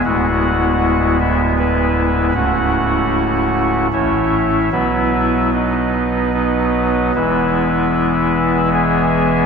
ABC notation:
X:1
M:3/4
L:1/8
Q:1/4=76
K:E
V:1 name="Pipe organ"
[Ff]3 [Ee] [EBe]2 | [Ff]4 [Ece]2 | [EBe]2 [DBd]2 [DBd]2 | [EBe]4 [Geg]2 |]
V:2 name="Pipe organ" clef=bass
[=D,,,=D,,G,B,E]6 | [C,,,C,,A,CE]4 [A,,,A,,A,C]2 | [B,,,B,,F,B,]6 | [E,,,E,,E,G,B,]6 |]